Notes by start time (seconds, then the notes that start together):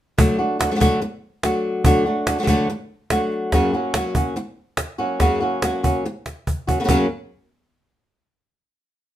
0.18 D3 F#3 A3 D4 F#4, cajon bass
0.39 A3 D4 F#4
0.59 A3 D4 F#4, cajon slap
0.71 F#3 A3 D4 F#4
0.76 A3 D4 F#4
0.80 D3 F#3 A3 D4 F#4, cajon bass
1.02 muted nylon-string guitar stroke, cajon slap
1.43 F#3 A3 D4 F#4, cajon slap
1.84 D3 F#3 A3 D4 F#4, cajon bass
2.06 A3 D4 F#4
2.27 A3 D4 F#4, cajon slap
2.38 F#3 A3 D4 F#4
2.43 F#3 A3 D4 F#4
2.47 D3 F#3 A3 D4 F#4, cajon bass
2.69 muted nylon-string guitar stroke, cajon slap
3.10 F#3 A3 D4 F#4, cajon slap
3.32 cajon slap
3.52 F#2 C#3 F#3 A#3 C#4 F#4, cajon bass, cajon slap
3.73 F#3 A#3 C#4 F#4
3.94 F#3 A#3 C#4 F#4, cajon slap
4.15 F#3 A#3 C#4 F#4, cajon bass
4.36 muted nylon-string guitar stroke
4.77 cajon slap
4.98 F#3 A#3 C#4 F#4
5.20 F#2 C#3 F#3 A#3 C#4 F#4, cajon bass, cajon slap
5.41 F#3 A#3 C#4 F#4
5.62 F#3 A#3 C#4 F#4, cajon slap
5.83 F#3 A#3 C#4 F#4, cajon bass
6.05 muted nylon-string guitar stroke
6.26 cajon slap
6.47 cajon bass
6.67 F#3 A#3 C#4 F#4, cajon bass
6.80 C#3 F#3 A#3 C#4 F#4
6.84 C#3 F#3 A#3 C#4 F#4
6.89 F#2 C#3 F#3 A#3 C#4 F#4, cajon bass